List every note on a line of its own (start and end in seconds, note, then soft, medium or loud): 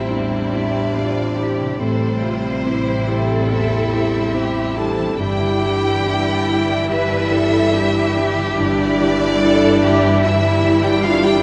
0.00 1.77 A1 soft
0.00 1.79 A2 soft
0.00 1.81 A2 soft
0.00 1.77 C3 soft
0.00 1.77 G3 soft
0.00 2.50 G3 soft
0.00 0.96 C4 soft
0.00 1.37 C4 soft
0.00 1.77 C4 soft
0.00 0.12 E4 soft
0.00 0.53 E4 soft
0.00 1.77 E4 medium
0.00 0.54 G4 soft
0.00 0.95 G4 soft
0.00 1.37 A4 soft
0.00 0.74 C5 soft
0.00 0.11 E5 medium
0.00 0.31 G5 soft
0.10 0.53 E2 soft
0.10 0.52 C4 soft
0.10 1.80 D4 medium
0.10 1.80 D5 medium
0.10 0.53 E5 soft
0.33 3.29 G5 soft
0.53 0.92 E4 soft
0.53 0.97 E4 medium
0.53 0.92 G4 soft
0.53 3.08 E5 soft
0.75 2.87 C5 soft
0.96 1.34 C4 soft
0.96 1.39 F4 medium
0.96 2.65 G4 soft
0.96 1.35 G4 soft
0.96 1.34 E5 soft
1.38 2.01 C4 soft
1.38 1.77 E4 soft
1.38 1.77 G4 soft
1.38 1.81 G4 soft
1.60 5.23 C3 soft
1.79 5.15 A1 medium
1.79 5.22 A2 soft
1.79 2.22 A2 soft
1.79 5.15 C3 soft
1.79 5.15 G3 soft
1.79 5.14 C4 medium
1.79 5.15 C4 medium
1.79 3.51 C4 medium
1.79 5.15 E4 medium
1.79 2.22 A4 soft
1.79 3.51 C5 medium
2.02 4.76 C4 soft
2.23 2.66 F4 soft
2.23 2.62 G4 soft
2.23 2.62 E5 soft
2.45 4.55 E4 soft
2.65 3.04 C4 soft
2.65 3.08 E4 medium
2.65 3.04 E4 soft
2.65 3.05 G4 soft
2.65 4.34 G4 soft
2.88 4.13 C5 soft
3.08 3.46 E4 soft
3.08 3.47 G4 soft
3.08 4.35 A4 medium
3.08 3.50 E5 soft
3.30 3.71 G5 soft
3.49 3.91 E2 soft
3.49 4.79 E4 medium
3.49 3.92 E5 soft
3.49 4.75 E5 medium
3.72 6.67 G5 soft
3.92 4.30 E4 soft
3.92 4.31 G4 soft
3.92 6.46 E5 soft
4.14 5.23 C5 soft
4.34 4.73 C4 soft
4.34 4.73 E4 soft
4.34 6.04 G4 soft
4.34 4.73 G4 soft
4.34 4.77 G4 medium
4.56 5.82 E4 soft
4.77 5.23 C4 soft
4.77 5.20 D4 soft
4.77 5.15 E4 soft
4.77 5.15 G4 soft
4.77 5.22 A4 medium
4.77 5.19 A5 medium
4.98 5.23 E3 soft
5.18 8.53 G1 medium
5.18 8.57 G2 soft
5.18 5.60 G2 soft
5.18 8.53 E3 medium
5.18 8.40 G3 medium
5.18 8.54 G3 medium
5.18 8.53 D4 medium
5.18 8.40 E4 medium
5.18 8.53 E4 medium
5.18 5.62 E4 soft
5.18 6.62 G4 medium
5.18 6.85 G5 medium
5.40 8.36 D3 soft
5.62 8.15 D4 soft
5.62 6.01 E4 soft
5.62 6.89 G4 medium
5.62 6.01 G4 soft
5.83 7.94 E4 soft
6.05 6.43 D4 soft
6.05 6.43 E4 soft
6.05 7.73 G4 medium
6.05 6.43 G4 soft
6.27 7.51 D5 soft
6.47 6.85 E4 soft
6.47 6.85 G4 soft
6.47 6.88 E5 soft
6.68 7.09 G5 soft
6.88 7.29 G2 soft
6.88 8.54 E4 medium
6.88 7.30 B4 medium
6.88 8.57 E5 medium
6.88 7.30 E5 medium
7.10 10.02 G5 soft
7.31 7.69 E4 soft
7.31 7.69 G4 soft
7.31 7.74 A4 medium
7.31 9.81 E5 medium
7.53 9.60 D5 soft
7.73 8.11 D4 soft
7.73 8.11 E4 soft
7.73 9.41 G4 medium
7.73 9.40 G4 medium
7.73 8.11 G4 soft
7.95 9.19 E4 soft
8.16 8.78 D4 soft
8.16 8.53 E4 soft
8.16 8.53 G4 soft
8.37 8.99 D3 medium
8.55 11.43 G1 medium
8.55 11.43 G2 medium
8.55 8.98 G2 medium
8.55 11.43 E3 medium
8.55 11.43 G3 medium
8.55 11.43 D4 medium
8.55 10.25 D4 medium
8.55 11.43 E4 medium
8.55 10.22 D5 loud
8.79 11.43 D4 soft
9.00 11.43 D3 medium
9.00 9.37 E4 soft
9.00 9.37 G4 soft
9.20 11.25 E4 soft
9.41 9.78 D4 soft
9.41 9.79 E4 medium
9.41 11.04 G4 medium
9.41 9.79 G4 medium
9.41 9.82 A4 medium
9.61 10.83 D5 medium
9.82 10.19 E4 soft
9.82 10.19 G4 medium
9.82 10.23 G4 medium
9.82 10.23 E5 medium
10.03 10.43 G5 medium
10.23 10.63 G2 medium
10.23 10.86 E4 medium
10.23 11.05 E4 medium
10.23 10.83 E5 medium
10.23 10.63 E5 medium
10.44 11.43 G5 medium
10.64 11.01 E4 medium
10.64 11.01 G4 medium
10.64 11.43 E5 medium
10.82 11.07 G4 medium
10.82 11.43 D5 medium
10.82 11.04 G5 medium
11.04 11.43 D4 medium
11.04 11.43 D4 soft
11.04 11.43 E4 soft
11.04 11.28 F4 medium
11.04 11.43 G4 medium
11.04 11.25 F5 loud
11.26 11.43 E4 medium
11.26 11.43 G4 medium
11.26 11.43 G5 medium